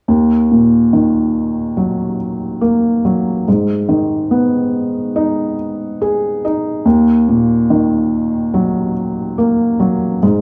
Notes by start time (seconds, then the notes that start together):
0.08 D#2
0.51 A#2
0.93 D#3
1.77 F#3
2.61 A#3
3.05 F#3
3.48 G#2
3.89 D#3
4.31 B3
5.16 D#4
6.02 G#4
6.45 D#4
6.85 D#2
7.28 A#2
7.70 D#3
8.54 F#3
9.38 A#3
9.80 F#3
10.23 G#2